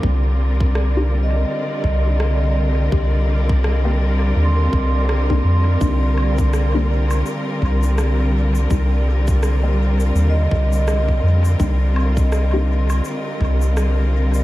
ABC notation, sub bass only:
X:1
M:4/4
L:1/8
Q:"Swing 16ths" 1/4=83
K:Cm
V:1 name="Sub bass" clef=bass
C,,4 z C,,3 | C,,4 E,, C,,2 F,, | C,,4 z C,,3 | C,,4 E,, C,,2 F,, |
C,,4 z C,,3 |]